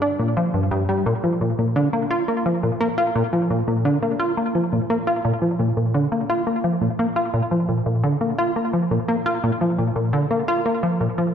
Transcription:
analog synth bass
0.02 D4
0.19 A#2
0.37 F3
0.54 G2
0.71 G2
0.89 G3
1.06 A#2
1.24 F3
1.41 A#2
1.58 A#2
1.76 D3
1.93 A#3
2.11 F4
2.28 A#3
2.46 F3
2.63 A#2
2.80 A#3
2.98 F4
3.15 A#2
3.33 F3
3.50 A#2
3.68 A#2
3.85 D3
4.02 A#3
4.20 F4
4.37 A#3
4.55 F3
4.72 A#2
4.90 A#3
5.07 F4
5.25 A#2
5.42 F3
5.59 A#2
5.77 A#2
5.94 D3
6.12 A#3
6.30 F4
6.47 A#3
6.64 F3
6.81 A#2
6.99 A#3
7.16 F4
7.34 A#2
7.51 F3
7.69 A#2
7.86 A#2
8.04 D3
8.21 A#3
8.38 F4
8.56 A#3
8.73 F3
8.91 A#2
9.08 A#3
9.26 F4
9.43 A#2
9.61 F3
9.78 A#2
9.96 A#2
10.13 D3
10.31 A#3
10.48 F4
10.66 A#3
10.83 F3
11.01 A#2
11.18 F3

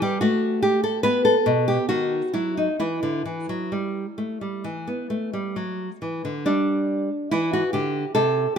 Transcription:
nylon-string guitar
0.02 G3 G4
0.21 A3 F#4
0.62 G4
0.84 A4
1.03 B3 B4
1.25 A4
1.46 B2
1.68 G4
1.89 D#3 F#4
2.33 F#3 E4
2.57 D#4
2.80 E3 E4
3.03 D3
3.25 E3
3.49 F#3
3.72 G3
4.18 A3
4.41 G3
4.64 E3
4.87 B3
5.10 A3
5.33 G3
5.56 F#3
6.02 E3
6.25 D3
6.46 G3 D4
7.31 E3 E4
7.53 F#4
7.73 D3 G4
8.15 C3 A4

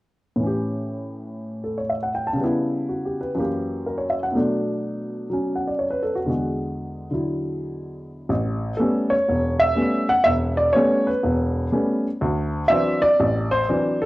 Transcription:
grand piano
0.36 A2 E3
0.43 C#4 G4
1.64 A4
1.78 C#5
1.89 E5
2.03 F#5
2.15 G5
2.27 A5
2.33 C#3
2.37 G3 B3
2.44 E4
2.89 F#4
3.05 G4
3.21 B4
3.35 F#2 E3 A#3
3.40 G4
3.86 A#4
3.98 C#5
4.10 E5
4.23 F#5
4.32 B2 F#3 A3
4.37 D4
5.30 F#3 C#4
5.55 F#5
5.67 D5
5.79 C#5
5.90 B4
6.03 A4
6.15 F#4
6.25 E2 D3 G#3
6.29 F#4
7.11 D3 F#3 E4
8.29 A1
8.77 G3 A3 B3 C#4 A4
9.10 C#5
9.29 E1
9.60 E5
9.76 G3 A3 B3 C#4
10.09 F#5
10.24 E1 E5
10.57 D5
10.73 G3 A3 B3 C#4 C#5
11.07 B4
11.23 E1
11.72 G3 A3 B3 C#4
12.21 D2
12.68 E3 F#3 C4 D4 E5
13.02 D5
13.20 A1
13.51 C5
13.69 E3 F#3 C4 D4
14.02 A4

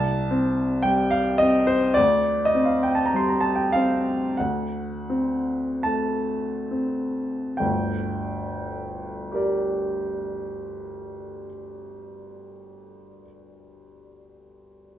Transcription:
grand piano
Already playing: C2 A5
0.31 C4
0.83 G3 G5
1.11 F5
1.38 C4 D#5
1.67 C5
1.94 D2 D5
2.45 D#5
2.54 C4
2.65 F5
2.83 G5
2.95 A5
3.06 A#5
3.13 G3 C6
3.29 A#5
3.41 A5
3.55 G5
3.72 C4 F5
4.37 D2 F#5
5.10 C4
5.83 A3 A5
6.71 C4
7.57 G1 D2 G5
9.32 G4 A#4
9.36 D5

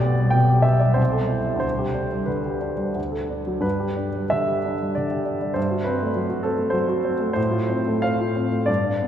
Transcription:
grand piano
Already playing: B1 G4 D5
0.05 B3
0.20 G3
0.30 B2 G5
0.50 G4
0.62 B3 E5
0.79 G3 D5
0.94 C2 C5
1.12 A4
1.28 E4
1.45 G3
1.56 D2
1.60 C5
1.79 G4
1.94 D4
2.12 G3
2.26 D3 B4
2.45 G4
2.61 D4
2.77 G3
2.95 D2
3.12 A4
3.30 D4
3.47 F#3
3.60 G2 B4
3.80 G4
3.96 D4
4.16 G3
4.30 D3 E5
4.48 G4
4.65 D4
4.82 G3
4.95 D3 D5
5.11 G4
5.25 D4
5.42 G3
5.54 G2 C5
5.71 F#4
5.84 C4 B4
6.03 A3
6.15 F#3
6.29 F#4
6.43 C4 A4
6.59 A3
6.70 F#3 C5
6.88 F#4
7.05 C4
7.20 A3
7.33 A2 C5
7.51 F4
7.70 C4
7.88 A3
8.02 C4 F5
8.20 F4
8.36 C4
8.52 A3
8.66 G2 D5
8.84 D4
9.01 B3

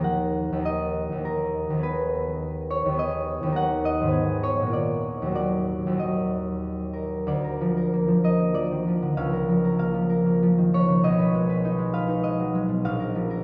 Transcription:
harp
Already playing: D#2 D#3 A#3
0.01 A#4 F#5
0.52 D#2 D#3
0.59 A#3 A#4
0.65 D#5
1.12 D#2 D#3
1.18 A#3
1.25 A#4
1.70 D#2 D#3
1.77 B3 G#4
1.83 B4
2.70 C#5
2.86 D#2 D#3
2.92 B3 G#4
2.99 D#5
3.43 D#2 D#3
3.49 A#3 A#4
3.56 F#5
3.85 D#5
4.02 G#2 D#3
4.08 B3 G#4
4.43 C#5
4.60 A#2 G#3
4.66 A#3 F4
4.73 D5
5.22 D#2 F#3
5.28 A#3 F#4
5.35 D5
5.87 D#2 F#3
5.93 A#3 F#4
5.99 D#5
6.93 A#4
7.27 D2 D5
7.44 A#4
7.61 F3
7.77 A#4
7.93 A#3
8.08 F3
8.24 A#4 D#5
8.40 A#3
8.54 F3 D5
8.71 D#3
8.87 F3
9.02 D3
9.17 C#2 F5
9.33 A#4
9.49 F3
9.65 A#4
9.78 A#3 F5
9.94 F3
10.10 A#4
10.26 A#3
10.42 F3
10.58 D#3
10.73 F3 C#5
10.88 C#3
11.03 B1 D#5
11.19 B4
11.35 G#3
11.49 B4
11.65 D#4
11.78 G#3
11.94 B4 F5
12.08 D#4
12.23 G#3 D#5
12.39 F#3
12.55 G#3
12.68 B2
12.85 A#1 F5
13.00 A#4
13.15 F3
13.30 A#4

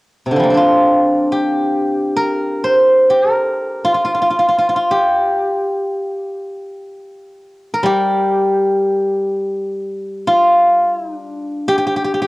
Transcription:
guzheng
0.26 C3
0.31 D3
0.36 F3 G3
0.43 A#3
0.50 C4 D4
0.57 F4
1.32 G4
2.17 A#4
2.64 C5
3.10 G4
3.33 A#4
3.85 F4
3.94 F4
4.05 F4
4.14 F4
4.22 F4
4.30 F4
4.39 F4
4.48 F4
4.58 F4
4.69 F4
4.76 F4
4.91 G4
7.74 A#4
7.83 G3 G4
10.27 F4
10.94 E4
11.17 D4
11.68 G4
11.78 G4
11.87 G4
11.96 G4
12.04 G4
12.14 G4
12.22 G4

